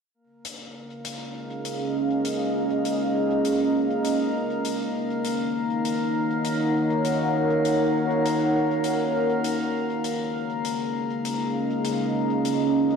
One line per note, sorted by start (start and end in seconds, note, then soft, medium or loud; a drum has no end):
0.14 12.96 A#3 medium
0.14 6.41 C#4 medium
0.14 12.96 A#4 medium
0.33 4.95 F5 medium
0.45 5.85 G#4 medium
0.45 closed hi-hat soft
0.59 6.89 D#5 medium
1.05 closed hi-hat medium
1.65 closed hi-hat medium
2.25 closed hi-hat medium
2.85 closed hi-hat medium
3.45 closed hi-hat medium
4.04 closed hi-hat medium
4.65 closed hi-hat medium
4.95 10.79 D#4 medium
5.12 11.69 A#4 medium
5.23 11.69 C#5 medium
5.23 closed hi-hat soft
5.35 9.75 F#5 medium
5.85 closed hi-hat medium
6.44 closed hi-hat medium
7.04 closed hi-hat medium
7.65 closed hi-hat soft
8.25 closed hi-hat medium
8.84 closed hi-hat medium
9.44 closed hi-hat medium
9.74 12.96 C#4 medium
9.85 12.96 G#4 medium
10.04 closed hi-hat medium
10.15 12.96 D#5 medium
10.39 12.96 F5 medium
10.65 closed hi-hat medium
11.25 closed hi-hat medium
11.84 closed hi-hat medium
12.45 closed hi-hat medium